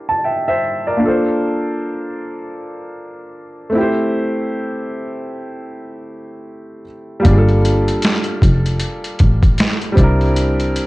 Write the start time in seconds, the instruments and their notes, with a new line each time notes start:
Already playing: upright piano A#3 D4 E4 G4
0.09 upright piano A5
0.24 upright piano E5 G5
0.48 upright piano C5 E5
0.87 upright piano A#4 D5
0.97 upright piano A#3 D4
1.03 upright piano F4 A4
1.08 upright piano C5
3.70 upright piano A3 C4
3.75 upright piano E4 G4
3.81 upright piano C5
7.20 upright piano G3 A#3
7.25 double bass G1, upright piano D4 F4, kick, closed hi-hat
7.31 upright piano G#4
7.37 upright piano A4
7.49 closed hi-hat
7.65 closed hi-hat
7.88 closed hi-hat
8.02 snare, closed hi-hat
8.24 closed hi-hat
8.42 double bass F1, kick, closed hi-hat
8.66 closed hi-hat
8.80 closed hi-hat
9.04 closed hi-hat
9.19 double bass A1, kick, closed hi-hat
9.43 kick, closed hi-hat
9.58 snare, closed hi-hat
9.81 closed hi-hat
9.92 upright piano G3 C4
9.97 double bass C2, upright piano D4 E4, kick, closed hi-hat
10.03 upright piano A#4
10.21 closed hi-hat
10.36 closed hi-hat
10.60 closed hi-hat
10.76 closed hi-hat